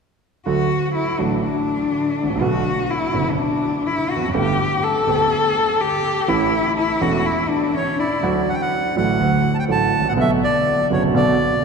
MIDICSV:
0, 0, Header, 1, 4, 480
1, 0, Start_track
1, 0, Key_signature, 2, "major"
1, 0, Tempo, 485437
1, 461, Time_signature, 4, 2, 24, 8
1, 11515, End_track
2, 0, Start_track
2, 0, Title_t, "Bandoneon"
2, 0, Program_c, 0, 23
2, 7680, Note_on_c, 0, 73, 71
2, 7895, Note_off_c, 0, 73, 0
2, 7901, Note_on_c, 0, 74, 58
2, 8391, Note_on_c, 0, 78, 66
2, 8397, Note_off_c, 0, 74, 0
2, 8441, Note_on_c, 0, 79, 61
2, 8458, Note_off_c, 0, 78, 0
2, 8516, Note_off_c, 0, 79, 0
2, 8517, Note_on_c, 0, 78, 70
2, 8856, Note_off_c, 0, 78, 0
2, 8871, Note_on_c, 0, 78, 72
2, 9435, Note_on_c, 0, 81, 53
2, 9454, Note_off_c, 0, 78, 0
2, 9464, Note_off_c, 0, 81, 0
2, 9485, Note_on_c, 0, 79, 76
2, 9534, Note_off_c, 0, 79, 0
2, 9605, Note_on_c, 0, 81, 83
2, 9964, Note_off_c, 0, 81, 0
2, 9970, Note_on_c, 0, 78, 63
2, 10018, Note_off_c, 0, 78, 0
2, 10089, Note_on_c, 0, 76, 72
2, 10191, Note_off_c, 0, 76, 0
2, 10319, Note_on_c, 0, 74, 80
2, 10755, Note_off_c, 0, 74, 0
2, 10805, Note_on_c, 0, 73, 59
2, 10907, Note_off_c, 0, 73, 0
2, 11037, Note_on_c, 0, 74, 70
2, 11515, Note_off_c, 0, 74, 0
2, 11515, End_track
3, 0, Start_track
3, 0, Title_t, "Cello"
3, 0, Program_c, 1, 42
3, 464, Note_on_c, 1, 66, 56
3, 910, Note_off_c, 1, 66, 0
3, 936, Note_on_c, 1, 64, 50
3, 1181, Note_on_c, 1, 62, 45
3, 1196, Note_off_c, 1, 64, 0
3, 1412, Note_off_c, 1, 62, 0
3, 1418, Note_on_c, 1, 62, 52
3, 2380, Note_on_c, 1, 66, 63
3, 2395, Note_off_c, 1, 62, 0
3, 2868, Note_on_c, 1, 64, 60
3, 2883, Note_off_c, 1, 66, 0
3, 3267, Note_on_c, 1, 61, 45
3, 3282, Note_off_c, 1, 64, 0
3, 3339, Note_on_c, 1, 62, 58
3, 3354, Note_off_c, 1, 61, 0
3, 3823, Note_on_c, 1, 64, 66
3, 3838, Note_off_c, 1, 62, 0
3, 4056, Note_on_c, 1, 66, 58
3, 4071, Note_off_c, 1, 64, 0
3, 4291, Note_off_c, 1, 66, 0
3, 4297, Note_on_c, 1, 67, 68
3, 4783, Note_on_c, 1, 69, 68
3, 4797, Note_off_c, 1, 67, 0
3, 5735, Note_on_c, 1, 67, 72
3, 5749, Note_off_c, 1, 69, 0
3, 6214, Note_on_c, 1, 64, 68
3, 6229, Note_off_c, 1, 67, 0
3, 6693, Note_off_c, 1, 64, 0
3, 6698, Note_on_c, 1, 64, 57
3, 6936, Note_on_c, 1, 66, 63
3, 6951, Note_off_c, 1, 64, 0
3, 7178, Note_on_c, 1, 64, 57
3, 7193, Note_off_c, 1, 66, 0
3, 7408, Note_on_c, 1, 62, 65
3, 7423, Note_off_c, 1, 64, 0
3, 7656, Note_on_c, 1, 61, 57
3, 7671, Note_off_c, 1, 62, 0
3, 7902, Note_on_c, 1, 64, 51
3, 7916, Note_off_c, 1, 61, 0
3, 8142, Note_off_c, 1, 64, 0
3, 11515, End_track
4, 0, Start_track
4, 0, Title_t, "Grand piano"
4, 0, Program_c, 2, 0
4, 453, Note_on_c, 2, 50, 53
4, 456, Note_on_c, 2, 57, 37
4, 457, Note_on_c, 2, 54, 36
4, 459, Note_on_c, 2, 38, 48
4, 463, Note_on_c, 2, 66, 49
4, 661, Note_off_c, 2, 54, 0
4, 661, Note_off_c, 2, 57, 0
4, 662, Note_off_c, 2, 38, 0
4, 662, Note_off_c, 2, 50, 0
4, 664, Note_off_c, 2, 66, 0
4, 1174, Note_on_c, 2, 33, 37
4, 1174, Note_on_c, 2, 54, 31
4, 1176, Note_on_c, 2, 50, 30
4, 1176, Note_on_c, 2, 57, 30
4, 1177, Note_on_c, 2, 45, 38
4, 1181, Note_on_c, 2, 66, 37
4, 1380, Note_off_c, 2, 33, 0
4, 1380, Note_off_c, 2, 54, 0
4, 1381, Note_off_c, 2, 45, 0
4, 1381, Note_off_c, 2, 50, 0
4, 1381, Note_off_c, 2, 57, 0
4, 1383, Note_off_c, 2, 66, 0
4, 2206, Note_on_c, 2, 32, 35
4, 2263, Note_off_c, 2, 32, 0
4, 2274, Note_on_c, 2, 33, 39
4, 2325, Note_on_c, 2, 34, 45
4, 2327, Note_off_c, 2, 33, 0
4, 2380, Note_on_c, 2, 59, 38
4, 2381, Note_on_c, 2, 47, 49
4, 2381, Note_on_c, 2, 54, 42
4, 2382, Note_on_c, 2, 50, 45
4, 2383, Note_off_c, 2, 34, 0
4, 2383, Note_on_c, 2, 35, 53
4, 2384, Note_on_c, 2, 66, 49
4, 2582, Note_off_c, 2, 47, 0
4, 2582, Note_off_c, 2, 50, 0
4, 2582, Note_off_c, 2, 54, 0
4, 2582, Note_off_c, 2, 59, 0
4, 2583, Note_off_c, 2, 35, 0
4, 2583, Note_off_c, 2, 66, 0
4, 3096, Note_on_c, 2, 30, 41
4, 3097, Note_on_c, 2, 50, 32
4, 3100, Note_on_c, 2, 42, 36
4, 3100, Note_on_c, 2, 59, 32
4, 3101, Note_on_c, 2, 54, 32
4, 3105, Note_on_c, 2, 66, 35
4, 3298, Note_off_c, 2, 30, 0
4, 3299, Note_off_c, 2, 50, 0
4, 3300, Note_off_c, 2, 42, 0
4, 3300, Note_off_c, 2, 54, 0
4, 3300, Note_off_c, 2, 59, 0
4, 3303, Note_off_c, 2, 66, 0
4, 4112, Note_on_c, 2, 40, 37
4, 4173, Note_off_c, 2, 40, 0
4, 4177, Note_on_c, 2, 41, 41
4, 4233, Note_on_c, 2, 42, 47
4, 4235, Note_off_c, 2, 41, 0
4, 4290, Note_on_c, 2, 50, 46
4, 4292, Note_on_c, 2, 57, 42
4, 4293, Note_off_c, 2, 42, 0
4, 4293, Note_on_c, 2, 31, 56
4, 4294, Note_on_c, 2, 59, 42
4, 4295, Note_on_c, 2, 43, 53
4, 4295, Note_on_c, 2, 67, 47
4, 4492, Note_off_c, 2, 50, 0
4, 4494, Note_off_c, 2, 31, 0
4, 4494, Note_off_c, 2, 57, 0
4, 4494, Note_off_c, 2, 59, 0
4, 4495, Note_off_c, 2, 43, 0
4, 4495, Note_off_c, 2, 67, 0
4, 5008, Note_on_c, 2, 50, 43
4, 5012, Note_on_c, 2, 38, 42
4, 5014, Note_on_c, 2, 57, 34
4, 5015, Note_on_c, 2, 59, 36
4, 5017, Note_on_c, 2, 67, 44
4, 5213, Note_off_c, 2, 38, 0
4, 5214, Note_off_c, 2, 50, 0
4, 5214, Note_off_c, 2, 57, 0
4, 5214, Note_off_c, 2, 59, 0
4, 5215, Note_off_c, 2, 67, 0
4, 6210, Note_on_c, 2, 52, 47
4, 6211, Note_on_c, 2, 57, 46
4, 6212, Note_on_c, 2, 61, 42
4, 6214, Note_on_c, 2, 33, 62
4, 6214, Note_on_c, 2, 69, 60
4, 6215, Note_on_c, 2, 45, 52
4, 6412, Note_off_c, 2, 52, 0
4, 6412, Note_off_c, 2, 57, 0
4, 6413, Note_off_c, 2, 61, 0
4, 6414, Note_off_c, 2, 33, 0
4, 6414, Note_off_c, 2, 45, 0
4, 6414, Note_off_c, 2, 69, 0
4, 6930, Note_on_c, 2, 52, 38
4, 6931, Note_on_c, 2, 40, 47
4, 6931, Note_on_c, 2, 57, 31
4, 6933, Note_on_c, 2, 28, 44
4, 6933, Note_on_c, 2, 61, 33
4, 6934, Note_on_c, 2, 69, 39
4, 7134, Note_off_c, 2, 52, 0
4, 7134, Note_off_c, 2, 57, 0
4, 7135, Note_off_c, 2, 28, 0
4, 7135, Note_off_c, 2, 40, 0
4, 7135, Note_off_c, 2, 61, 0
4, 7136, Note_off_c, 2, 69, 0
4, 8136, Note_on_c, 2, 50, 58
4, 8136, Note_on_c, 2, 54, 48
4, 8138, Note_on_c, 2, 38, 61
4, 8140, Note_on_c, 2, 57, 51
4, 8142, Note_on_c, 2, 66, 57
4, 8341, Note_off_c, 2, 54, 0
4, 8342, Note_off_c, 2, 38, 0
4, 8342, Note_off_c, 2, 50, 0
4, 8343, Note_off_c, 2, 57, 0
4, 8344, Note_off_c, 2, 66, 0
4, 8859, Note_on_c, 2, 50, 38
4, 8860, Note_on_c, 2, 45, 42
4, 8862, Note_on_c, 2, 57, 35
4, 8863, Note_on_c, 2, 54, 34
4, 8865, Note_on_c, 2, 33, 48
4, 8868, Note_on_c, 2, 66, 42
4, 9063, Note_off_c, 2, 45, 0
4, 9063, Note_off_c, 2, 50, 0
4, 9064, Note_off_c, 2, 57, 0
4, 9065, Note_off_c, 2, 54, 0
4, 9066, Note_off_c, 2, 33, 0
4, 9067, Note_off_c, 2, 66, 0
4, 9096, Note_on_c, 2, 50, 55
4, 9100, Note_on_c, 2, 38, 59
4, 9100, Note_on_c, 2, 54, 41
4, 9104, Note_on_c, 2, 57, 50
4, 9104, Note_on_c, 2, 66, 48
4, 9302, Note_off_c, 2, 50, 0
4, 9303, Note_off_c, 2, 38, 0
4, 9303, Note_off_c, 2, 54, 0
4, 9305, Note_off_c, 2, 57, 0
4, 9305, Note_off_c, 2, 66, 0
4, 9574, Note_on_c, 2, 50, 34
4, 9575, Note_on_c, 2, 45, 42
4, 9575, Note_on_c, 2, 54, 31
4, 9577, Note_on_c, 2, 33, 43
4, 9578, Note_on_c, 2, 57, 33
4, 9583, Note_on_c, 2, 66, 36
4, 9780, Note_off_c, 2, 50, 0
4, 9780, Note_off_c, 2, 54, 0
4, 9781, Note_off_c, 2, 45, 0
4, 9782, Note_off_c, 2, 33, 0
4, 9782, Note_off_c, 2, 57, 0
4, 9784, Note_off_c, 2, 66, 0
4, 9881, Note_on_c, 2, 32, 42
4, 9934, Note_on_c, 2, 33, 46
4, 9942, Note_off_c, 2, 32, 0
4, 9998, Note_off_c, 2, 33, 0
4, 9998, Note_on_c, 2, 34, 52
4, 10054, Note_on_c, 2, 50, 50
4, 10056, Note_on_c, 2, 47, 61
4, 10059, Note_on_c, 2, 54, 46
4, 10060, Note_off_c, 2, 34, 0
4, 10060, Note_on_c, 2, 35, 63
4, 10060, Note_on_c, 2, 59, 47
4, 10063, Note_on_c, 2, 66, 58
4, 10259, Note_off_c, 2, 50, 0
4, 10260, Note_off_c, 2, 47, 0
4, 10261, Note_off_c, 2, 54, 0
4, 10262, Note_off_c, 2, 35, 0
4, 10262, Note_off_c, 2, 59, 0
4, 10264, Note_off_c, 2, 66, 0
4, 10781, Note_on_c, 2, 54, 41
4, 10782, Note_on_c, 2, 59, 40
4, 10783, Note_on_c, 2, 50, 39
4, 10784, Note_on_c, 2, 42, 45
4, 10786, Note_on_c, 2, 30, 51
4, 10787, Note_on_c, 2, 66, 46
4, 10980, Note_off_c, 2, 54, 0
4, 10981, Note_off_c, 2, 59, 0
4, 10982, Note_off_c, 2, 42, 0
4, 10982, Note_off_c, 2, 50, 0
4, 10983, Note_off_c, 2, 30, 0
4, 10983, Note_off_c, 2, 66, 0
4, 11013, Note_on_c, 2, 47, 67
4, 11014, Note_on_c, 2, 50, 52
4, 11014, Note_on_c, 2, 54, 45
4, 11016, Note_on_c, 2, 59, 45
4, 11018, Note_on_c, 2, 35, 62
4, 11020, Note_on_c, 2, 66, 53
4, 11215, Note_off_c, 2, 47, 0
4, 11216, Note_off_c, 2, 50, 0
4, 11216, Note_off_c, 2, 54, 0
4, 11217, Note_off_c, 2, 59, 0
4, 11218, Note_off_c, 2, 35, 0
4, 11219, Note_off_c, 2, 66, 0
4, 11515, End_track
0, 0, End_of_file